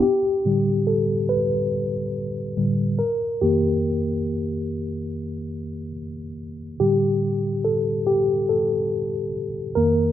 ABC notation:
X:1
M:4/4
L:1/8
Q:"Swing 16ths" 1/4=71
K:Flyd
V:1 name="Tine electric piano"
G2 A B4 _B | G6 z2 | G2 A G A2 z _B |]
V:2 name="Tine electric piano" clef=bass
z [A,,D,G,] z4 [A,,D,G,] z | [F,,_E,_B,]8 | [A,,D,G,]6- [A,,D,G,] [F,,_E,_B,] |]